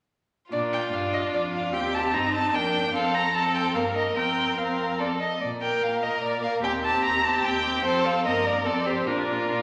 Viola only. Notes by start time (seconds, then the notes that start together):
0.52 D4
0.93 D4
1.73 C4
2.54 A#3
2.94 C4
3.35 C4
3.75 A#3
4.17 C4
4.58 C4
5.00 C4
5.62 A#3
6.03 A#3
6.43 A#3
6.63 C4
6.84 C4
7.25 C4
7.65 C4
7.84 C4
8.25 A#3
8.66 C4
9.07 D4
9.49 D4